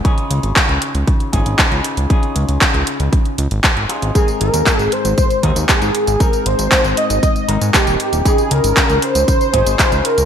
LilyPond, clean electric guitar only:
\new Staff \with { instrumentName = "Clean electric guitar" } { \time 4/4 \key des \lydian \tempo 4 = 117 <des des' ees' f' aes'>2~ <des des' ees' f' aes'>8 <des des' ees' f' aes'>4. | <des des' ees' f' aes'>2~ <des des' ees' f' aes'>8 r4 <des' ees' f' aes'>8 | <aes, c' ees' aes' bes'>2~ <aes, c' ees' aes' bes'>8 <aes, c' ees' aes' bes'>4. | <aes, c' ees' aes' bes'>2~ <aes, c' ees' aes' bes'>8 <aes, aes c' ees' bes'>4. |
<des des' ees' f' aes'>2~ <des des' ees' f' aes'>8 <des des' ees' f' aes'>4. | }